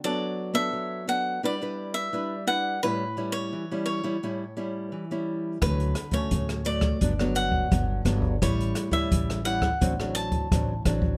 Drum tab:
HH |----------------|----------------|xxxxxxxxx-x-x-x-|xxx-xxx-x-xxx-x-|
SD |----------------|----------------|r-r--r-r-r--r-r-|r-r--r-r-r--r-r-|
BD |----------------|----------------|o--oo--oo--oo--o|o--oo--oo--oo--o|